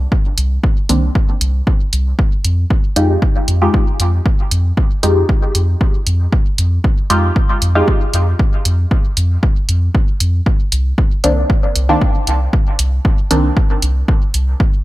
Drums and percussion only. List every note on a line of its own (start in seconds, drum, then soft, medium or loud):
0.12 kick loud
0.38 closed hi-hat medium
0.64 kick loud
0.89 closed hi-hat medium
1.15 kick loud
1.41 closed hi-hat medium
1.67 kick loud
1.93 closed hi-hat medium
2.19 kick loud
2.45 closed hi-hat medium
2.70 kick loud
2.96 closed hi-hat medium
3.22 kick loud
3.48 closed hi-hat medium
3.74 kick loud
4.00 closed hi-hat medium
4.26 kick loud
4.51 closed hi-hat medium
4.77 kick loud
5.03 closed hi-hat medium
5.29 kick loud
5.55 closed hi-hat medium
5.81 kick loud
6.07 closed hi-hat medium
6.32 kick loud
6.58 closed hi-hat medium
6.84 kick loud
7.10 closed hi-hat medium
7.36 kick loud
7.62 closed hi-hat medium
7.88 kick loud
8.14 closed hi-hat medium
8.39 kick loud
8.65 closed hi-hat medium
8.91 kick loud
9.17 closed hi-hat medium
9.43 kick loud
9.69 closed hi-hat medium
9.95 kick loud
10.20 closed hi-hat medium
10.46 kick loud
10.72 closed hi-hat medium
10.98 kick loud
11.24 closed hi-hat medium
11.50 kick loud
11.76 closed hi-hat medium
12.01 kick loud
12.27 closed hi-hat medium
12.53 kick loud
12.79 closed hi-hat medium
13.05 kick loud
13.31 closed hi-hat medium
13.57 kick loud
13.82 closed hi-hat medium
14.08 kick loud
14.34 closed hi-hat medium
14.60 kick loud